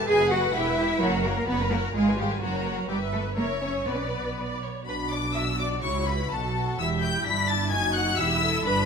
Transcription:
0.08 double bass section F#1, viola section F#4 D#5, cello section G#4, violin section B4 G#5
0.20 viola section A4 F#5
0.31 cello section F#4, viola section F#4 D#5, violin section F#5
0.43 viola section A4 F#5
0.54 double bass section E1, cello section E4, viola section G4 G5, violin section E5
0.66 viola section B4 E5
0.77 viola section G4 G5
0.89 viola section B4 E5
1.00 double bass section F#1, cello section F#3, violin section F#4 A#4, viola section C#5 F#5
1.12 viola section A#4 A#5
1.24 cello section A#3, violin section A#4, viola section C#5 F#5
1.36 viola section A#4 A#5
1.48 double bass section F#1, cello section B3, violin section F#4 B4, viola section C#5 F#5
1.59 viola section A#4 A#5
1.71 cello section A#3, violin section A#4, viola section C#5 F#5
1.83 viola section A#4 A#5
1.94 double bass section G#1, cello section G#3, violin section F4 G#4, viola section G#4 F5
2.06 viola section B4 G#5
2.18 cello section G3, violin section G4, viola section G#4 F5
2.30 viola section B4 G#5
2.42 double bass section F#1, cello section F#3, violin section F#4 A#4, viola section C#5 F#5
2.54 viola section A#4 A#5
2.65 viola section C#5 F#5
2.77 viola section A#4 A#5
2.88 double bass section G1, cello section G3, violin section G4 B4, viola section B4 E5
3.13 cello section A3, violin section A4
3.37 double bass section F#1, cello section A#3, violin section A#4 C#5, viola section C#5 E5
3.62 cello section C#4, violin section C#5
3.87 double bass section B1, cello section B3, viola section B4 D5, violin section B4 D5
3.95 cello section C#4
4.02 cello section B3
4.38 viola section D5
4.63 viola section C#5
4.87 double bass section B1, cello section B2, viola section D4 F#4, violin section B4 B5
5.11 violin section D5 D6
5.35 violin section E5 E6
5.59 violin section D5 D6
5.83 double bass section C#2, cello section C#3, viola section E4, violin section C#5 C#6
6.07 violin section B4 B5
6.30 double bass section B1, cello section B2, viola section F#4, violin section A4 A5
6.56 viola section F#4
6.79 double bass section E1, cello section E2, viola section E4 G4, violin section E5 E6
7.03 violin section G5 G6
7.26 double bass section G1, cello section G2, viola section D4 E4, violin section B5 B6
7.49 violin section A5 A6
7.72 double bass section F#1, cello section F#2, viola section D#4 F#4, violin section G#5 G#6
7.95 violin section F#5 F#6
8.18 double bass section E1, cello section E2, viola section E4 G4, violin section E5 E6
8.43 viola section A4
8.65 double bass section G1, cello section G2, viola section D4 B4, violin section B4 B5

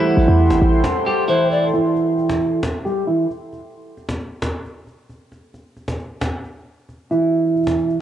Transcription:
Already playing: clean electric guitar E3 E4, felt piano A3 E4 G4 C5, ambient pad A4 G5 C6
0.17 808-style bass A1
0.28 808-style bass E2
0.39 cajon slap
0.47 808-style bass G1, cajon slap
0.50 cajon slap
0.54 cajon slap
0.62 808-style bass A1, cajon slap
0.73 cajon slap
0.84 cajon slap
0.91 cajon slap
0.99 cajon slap
1.06 clean electric guitar G3 G4, cajon slap
1.28 clean electric guitar E3 E4, pan flute C5, cajon slap
1.36 cajon slap
1.44 cajon slap
1.51 pan flute D5, cajon slap
1.57 cajon slap
1.62 cajon slap
1.68 cajon slap
1.74 clean electric guitar E3 E4, cajon slap
1.96 cajon slap
2.18 cajon slap
2.30 cajon slap
2.40 cajon slap
2.63 cajon slap
2.85 clean electric guitar G3 G4, cajon slap
3.07 clean electric guitar E3 E4
3.30 cajon slap
3.53 cajon slap
3.97 cajon slap
4.09 cajon slap
4.19 cajon slap
4.42 cajon slap
4.65 cajon slap
4.87 cajon slap
5.09 cajon slap
5.32 cajon slap
5.54 cajon slap
5.76 cajon slap
5.88 cajon slap
5.99 cajon slap
6.21 cajon slap
6.44 cajon slap
6.89 cajon slap
7.11 clean electric guitar E3 E4, cajon slap
7.56 cajon slap
7.63 cajon slap
7.67 cajon slap
7.71 cajon slap
7.78 cajon slap
7.89 cajon slap

